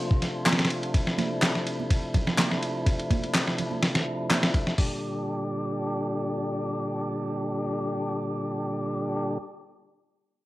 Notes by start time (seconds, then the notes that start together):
Already playing: C3 F3 A3 D4 F4
0.11 kick
0.22 snare, ride
0.46 snare, clap, ride, high conga
0.52 snare, ride
0.59 snare, ride
0.65 snare, ride
0.70 ride
0.83 ride
0.94 E4, kick, ride
1.07 snare
1.18 snare, ride, high conga
1.42 snare, clap, ride
1.55 snare
1.67 ride
1.80 high conga
1.90 kick, ride
2.14 kick, ride, low conga
2.27 snare, low conga
2.38 snare, clap, ride, high conga
2.51 snare
2.63 ride
2.86 kick, ride
2.99 ride
3.10 kick, ride, high conga
3.23 ride
3.34 snare, clap, ride
3.47 snare
3.58 ride, low conga
3.71 high conga
3.83 snare, ride
3.95 snare, ride
4.30 snare, clap, ride, high conga
4.43 snare, ride
4.54 kick, ride
4.67 snare
4.78 A#2 D3 G3 D4 G4, kick, open hi-hat